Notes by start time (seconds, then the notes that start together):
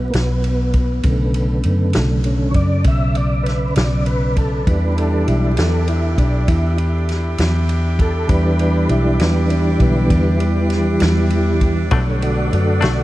Already playing: B1 B3
0.10 B1 A#3, ride
0.15 B3, snare
0.44 ride
0.74 kick, ride
1.03 B1 C#3 D3 A3, kick, ride
1.34 ride
1.63 F#2, ride
1.93 B1, snare, ride
2.23 D3 A3 C#4, ride
2.51 F#2 C#5, kick, ride
2.55 D5
2.84 B1 E5, kick, ride
3.15 D5, ride
3.43 B4, ride
3.48 snare
3.76 B1 D5, snare, ride
4.06 B4, ride
4.36 A4, kick, ride
4.65 E2 E3 G3 D4 E4 G4 B4, kick, ride
4.97 A4, ride
5.26 B1 E4, ride
5.57 E2 A4, snare, ride
5.88 E4, ride
6.18 B1 D4, kick, ride
6.48 E2 E4, kick, ride
6.78 ride
7.09 snare, ride
7.38 E2, snare, ride
7.69 ride
7.99 A4, kick, ride
8.27 E2 E3 G3 D4 B4, kick, ride
8.59 B4, ride
8.89 B1 E4, ride
9.20 E2 B3, snare, ride
9.50 D4, ride
9.80 B1 D3 B3, kick, ride
10.10 E2, kick, ride
10.40 ride
10.70 snare, ride
11.00 E2, snare, ride
11.30 ride
11.61 kick, ride
11.91 B1 B2 D3 F#3 A3 B3 D4 A4 C#5, kick, ride
12.20 F#4 C#5, ride
12.24 D5
12.53 F#2 F#4 D5, ride
12.81 B1 F#3 A3 D4 F#4 D5, snare, ride